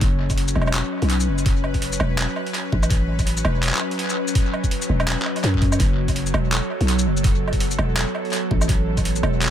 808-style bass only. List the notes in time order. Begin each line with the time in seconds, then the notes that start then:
0.01 F#1
0.56 E1
1.02 B1
1.28 F#1
2.00 E1
2.73 A1
3.45 E1
4.89 E1
5.44 F#2
5.80 F#1
6.34 E1
6.81 B1
7.06 F#1
7.79 E1
8.51 A1
9.23 E1